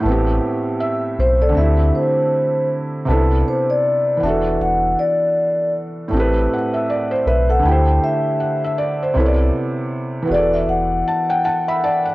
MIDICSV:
0, 0, Header, 1, 4, 480
1, 0, Start_track
1, 0, Tempo, 759494
1, 25, Time_signature, 4, 2, 24, 8
1, 7678, End_track
2, 0, Start_track
2, 0, Title_t, "Vibraphone"
2, 0, Program_c, 0, 11
2, 756, Note_on_c, 0, 72, 92
2, 895, Note_off_c, 0, 72, 0
2, 896, Note_on_c, 0, 74, 90
2, 938, Note_off_c, 0, 74, 0
2, 993, Note_on_c, 0, 76, 102
2, 1233, Note_on_c, 0, 72, 82
2, 1236, Note_off_c, 0, 76, 0
2, 1684, Note_off_c, 0, 72, 0
2, 2200, Note_on_c, 0, 72, 82
2, 2337, Note_off_c, 0, 72, 0
2, 2339, Note_on_c, 0, 74, 82
2, 2678, Note_on_c, 0, 76, 99
2, 2682, Note_off_c, 0, 74, 0
2, 2895, Note_off_c, 0, 76, 0
2, 2916, Note_on_c, 0, 78, 104
2, 3134, Note_off_c, 0, 78, 0
2, 3155, Note_on_c, 0, 74, 92
2, 3605, Note_off_c, 0, 74, 0
2, 4600, Note_on_c, 0, 76, 92
2, 4737, Note_off_c, 0, 76, 0
2, 4741, Note_on_c, 0, 78, 97
2, 4836, Note_off_c, 0, 78, 0
2, 4840, Note_on_c, 0, 79, 107
2, 5079, Note_off_c, 0, 79, 0
2, 5081, Note_on_c, 0, 76, 92
2, 5528, Note_off_c, 0, 76, 0
2, 6519, Note_on_c, 0, 74, 90
2, 6657, Note_off_c, 0, 74, 0
2, 6658, Note_on_c, 0, 76, 90
2, 6754, Note_off_c, 0, 76, 0
2, 6756, Note_on_c, 0, 78, 101
2, 7224, Note_off_c, 0, 78, 0
2, 7231, Note_on_c, 0, 78, 87
2, 7583, Note_off_c, 0, 78, 0
2, 7678, End_track
3, 0, Start_track
3, 0, Title_t, "Felt piano"
3, 0, Program_c, 1, 0
3, 0, Control_c, 1, 64, 127
3, 1, Note_on_c, 1, 45, 67
3, 20, Note_on_c, 1, 57, 65
3, 34, Control_c, 1, 64, 0
3, 37, Note_on_c, 1, 59, 69
3, 56, Note_on_c, 1, 60, 62
3, 75, Note_on_c, 1, 67, 76
3, 153, Control_c, 1, 64, 127
3, 509, Note_on_c, 1, 76, 67
3, 735, Note_off_c, 1, 76, 0
3, 759, Note_on_c, 1, 72, 64
3, 886, Note_off_c, 1, 72, 0
3, 896, Note_on_c, 1, 69, 59
3, 943, Note_on_c, 1, 50, 82
3, 952, Note_off_c, 1, 57, 0
3, 954, Note_off_c, 1, 45, 0
3, 961, Note_on_c, 1, 57, 69
3, 970, Note_off_c, 1, 60, 0
3, 972, Note_off_c, 1, 59, 0
3, 980, Note_on_c, 1, 60, 68
3, 991, Note_off_c, 1, 67, 0
3, 992, Control_c, 1, 64, 0
3, 997, Note_on_c, 1, 64, 73
3, 1017, Note_on_c, 1, 67, 76
3, 1100, Control_c, 1, 64, 127
3, 1119, Note_off_c, 1, 69, 0
3, 1904, Note_off_c, 1, 50, 0
3, 1914, Note_off_c, 1, 57, 0
3, 1923, Note_off_c, 1, 60, 0
3, 1928, Note_on_c, 1, 48, 73
3, 1932, Note_off_c, 1, 64, 0
3, 1939, Note_on_c, 1, 59, 64
3, 1942, Note_off_c, 1, 67, 0
3, 1948, Note_on_c, 1, 62, 72
3, 1953, Control_c, 1, 64, 0
3, 1958, Note_on_c, 1, 64, 63
3, 1965, Note_on_c, 1, 69, 80
3, 2076, Control_c, 1, 64, 127
3, 2636, Note_on_c, 1, 52, 67
3, 2645, Note_off_c, 1, 59, 0
3, 2654, Note_on_c, 1, 59, 66
3, 2657, Note_off_c, 1, 48, 0
3, 2664, Note_off_c, 1, 62, 0
3, 2671, Note_off_c, 1, 64, 0
3, 2673, Control_c, 1, 64, 0
3, 2673, Note_on_c, 1, 62, 74
3, 2675, Note_off_c, 1, 69, 0
3, 2691, Note_on_c, 1, 66, 67
3, 2709, Note_on_c, 1, 69, 75
3, 2776, Control_c, 1, 64, 127
3, 3826, Note_off_c, 1, 52, 0
3, 3836, Note_off_c, 1, 59, 0
3, 3843, Note_on_c, 1, 45, 64
3, 3845, Note_off_c, 1, 62, 0
3, 3854, Note_off_c, 1, 66, 0
3, 3860, Note_on_c, 1, 57, 67
3, 3864, Note_off_c, 1, 69, 0
3, 3874, Control_c, 1, 64, 0
3, 3879, Note_on_c, 1, 60, 65
3, 3898, Note_on_c, 1, 67, 71
3, 3916, Note_on_c, 1, 71, 82
3, 3984, Control_c, 1, 64, 127
3, 4126, Note_off_c, 1, 71, 0
3, 4131, Note_on_c, 1, 78, 62
3, 4252, Note_off_c, 1, 78, 0
3, 4259, Note_on_c, 1, 76, 67
3, 4347, Note_off_c, 1, 76, 0
3, 4359, Note_on_c, 1, 74, 71
3, 4486, Note_off_c, 1, 74, 0
3, 4495, Note_on_c, 1, 72, 67
3, 4585, Note_off_c, 1, 72, 0
3, 4597, Note_on_c, 1, 71, 73
3, 4725, Note_off_c, 1, 71, 0
3, 4735, Note_on_c, 1, 69, 61
3, 4795, Note_off_c, 1, 45, 0
3, 4800, Note_on_c, 1, 50, 78
3, 4803, Note_off_c, 1, 57, 0
3, 4813, Note_off_c, 1, 60, 0
3, 4820, Note_on_c, 1, 57, 69
3, 4823, Note_off_c, 1, 67, 0
3, 4833, Control_c, 1, 64, 0
3, 4839, Note_on_c, 1, 64, 68
3, 4857, Note_on_c, 1, 67, 72
3, 4876, Note_on_c, 1, 72, 85
3, 4949, Control_c, 1, 64, 127
3, 4959, Note_off_c, 1, 69, 0
3, 5086, Note_off_c, 1, 72, 0
3, 5310, Note_on_c, 1, 78, 61
3, 5441, Note_off_c, 1, 78, 0
3, 5463, Note_on_c, 1, 76, 65
3, 5549, Note_off_c, 1, 76, 0
3, 5549, Note_on_c, 1, 74, 72
3, 5681, Note_off_c, 1, 74, 0
3, 5704, Note_on_c, 1, 72, 62
3, 5753, Note_off_c, 1, 50, 0
3, 5764, Note_off_c, 1, 57, 0
3, 5773, Note_off_c, 1, 64, 0
3, 5775, Note_on_c, 1, 48, 75
3, 5782, Note_off_c, 1, 67, 0
3, 5783, Note_on_c, 1, 59, 64
3, 5794, Control_c, 1, 64, 0
3, 5794, Note_on_c, 1, 64, 66
3, 5802, Note_on_c, 1, 69, 64
3, 5812, Note_on_c, 1, 73, 63
3, 5847, Note_off_c, 1, 73, 0
3, 5853, Note_on_c, 1, 74, 77
3, 5887, Control_c, 1, 64, 127
3, 5923, Note_off_c, 1, 72, 0
3, 6462, Note_on_c, 1, 52, 70
3, 6472, Note_off_c, 1, 59, 0
3, 6481, Note_on_c, 1, 59, 60
3, 6498, Note_on_c, 1, 66, 65
3, 6500, Note_off_c, 1, 48, 0
3, 6509, Note_off_c, 1, 64, 0
3, 6514, Note_off_c, 1, 69, 0
3, 6514, Control_c, 1, 64, 0
3, 6517, Note_on_c, 1, 68, 46
3, 6526, Note_off_c, 1, 74, 0
3, 6536, Note_on_c, 1, 74, 81
3, 6558, Note_on_c, 1, 69, 64
3, 6559, Note_off_c, 1, 68, 0
3, 6642, Control_c, 1, 64, 127
3, 7001, Note_on_c, 1, 81, 70
3, 7124, Note_off_c, 1, 81, 0
3, 7139, Note_on_c, 1, 78, 65
3, 7141, Note_on_c, 1, 79, 73
3, 7227, Note_off_c, 1, 78, 0
3, 7227, Note_off_c, 1, 79, 0
3, 7236, Note_on_c, 1, 78, 67
3, 7238, Note_on_c, 1, 81, 67
3, 7362, Note_off_c, 1, 78, 0
3, 7366, Note_off_c, 1, 81, 0
3, 7383, Note_on_c, 1, 76, 62
3, 7384, Note_on_c, 1, 83, 69
3, 7468, Note_off_c, 1, 76, 0
3, 7470, Note_off_c, 1, 83, 0
3, 7472, Note_off_c, 1, 74, 0
3, 7482, Note_on_c, 1, 74, 71
3, 7482, Note_on_c, 1, 81, 67
3, 7607, Note_off_c, 1, 81, 0
3, 7618, Note_on_c, 1, 78, 66
3, 7659, Note_off_c, 1, 52, 0
3, 7669, Note_off_c, 1, 59, 0
3, 7678, Note_off_c, 1, 66, 0
3, 7678, Note_off_c, 1, 69, 0
3, 7678, Note_off_c, 1, 74, 0
3, 7678, Note_off_c, 1, 78, 0
3, 7678, End_track
4, 0, Start_track
4, 0, Title_t, "Sub bass"
4, 0, Program_c, 2, 38
4, 29, Note_on_c, 2, 33, 105
4, 251, Note_off_c, 2, 33, 0
4, 748, Note_on_c, 2, 35, 88
4, 970, Note_off_c, 2, 35, 0
4, 989, Note_on_c, 2, 38, 104
4, 1211, Note_off_c, 2, 38, 0
4, 1948, Note_on_c, 2, 36, 106
4, 2170, Note_off_c, 2, 36, 0
4, 2670, Note_on_c, 2, 28, 98
4, 2892, Note_off_c, 2, 28, 0
4, 2908, Note_on_c, 2, 28, 91
4, 3131, Note_off_c, 2, 28, 0
4, 3868, Note_on_c, 2, 33, 107
4, 4090, Note_off_c, 2, 33, 0
4, 4589, Note_on_c, 2, 35, 88
4, 4811, Note_off_c, 2, 35, 0
4, 4829, Note_on_c, 2, 38, 112
4, 5051, Note_off_c, 2, 38, 0
4, 5787, Note_on_c, 2, 36, 116
4, 6010, Note_off_c, 2, 36, 0
4, 6508, Note_on_c, 2, 28, 90
4, 6730, Note_off_c, 2, 28, 0
4, 6747, Note_on_c, 2, 28, 92
4, 6970, Note_off_c, 2, 28, 0
4, 7678, End_track
0, 0, End_of_file